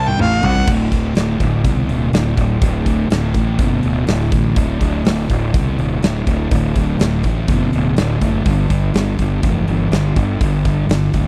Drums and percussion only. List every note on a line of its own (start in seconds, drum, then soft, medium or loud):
0.07 high tom medium
0.19 mid tom medium
0.43 floor tom loud
0.55 floor tom medium
0.67 kick loud
0.67 crash loud
0.92 kick medium
0.92 open hi-hat soft
1.15 snare loud
1.15 open hi-hat medium
1.40 kick medium
1.40 open hi-hat soft
1.65 kick loud
1.65 open hi-hat medium
1.89 open hi-hat medium
2.13 snare loud
2.13 open hi-hat medium
2.37 kick medium
2.37 open hi-hat medium
2.62 kick loud
2.62 open hi-hat medium
2.86 kick medium
2.86 open hi-hat medium
3.10 snare loud
3.10 open hi-hat medium
3.34 kick medium
3.34 open hi-hat medium
3.59 kick loud
3.59 open hi-hat medium
3.83 open hi-hat medium
4.07 snare loud
4.07 open hi-hat medium
4.32 kick medium
4.32 open hi-hat medium
4.56 kick loud
4.56 open hi-hat medium
4.81 kick medium
4.81 open hi-hat medium
5.05 snare loud
5.05 open hi-hat medium
5.30 kick medium
5.30 open hi-hat medium
5.54 kick loud
5.54 open hi-hat medium
5.79 open hi-hat soft
6.03 snare loud
6.03 open hi-hat medium
6.27 kick medium
6.27 open hi-hat medium
6.51 kick loud
6.51 open hi-hat medium
6.76 kick medium
6.76 open hi-hat medium
7.00 snare loud
7.00 open hi-hat medium
7.23 kick medium
7.23 open hi-hat medium
7.48 kick loud
7.48 open hi-hat medium
7.73 open hi-hat soft
7.97 snare loud
7.97 open hi-hat medium
8.21 kick medium
8.21 open hi-hat medium
8.46 kick loud
8.46 open hi-hat medium
8.70 kick medium
8.70 open hi-hat medium
8.94 snare medium
8.94 open hi-hat medium
9.19 kick medium
9.19 open hi-hat medium
9.43 kick loud
9.43 open hi-hat medium
9.68 open hi-hat soft
9.92 snare medium
9.92 open hi-hat medium
10.16 kick medium
10.16 open hi-hat medium
10.41 kick loud
10.41 open hi-hat medium
10.65 kick medium
10.65 open hi-hat soft
10.89 snare loud
10.89 open hi-hat medium
11.13 kick medium
11.13 open hi-hat medium